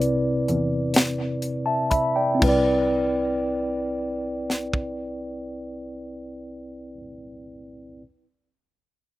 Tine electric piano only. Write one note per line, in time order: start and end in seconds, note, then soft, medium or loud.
0.00 0.91 C3 medium
0.00 2.34 C4 medium
0.00 2.38 E4 medium
0.00 2.39 B4 medium
0.00 0.97 D5 medium
1.66 1.90 E5 soft
1.66 1.90 A5 soft
1.91 2.15 E5 medium
1.91 2.15 B5 medium
2.16 2.47 D5 soft
2.16 2.65 G5 medium
2.35 6.93 C4 medium
2.39 6.97 C2 medium
2.39 6.96 E4 medium
2.44 6.98 B4 medium
2.49 7.00 D5 medium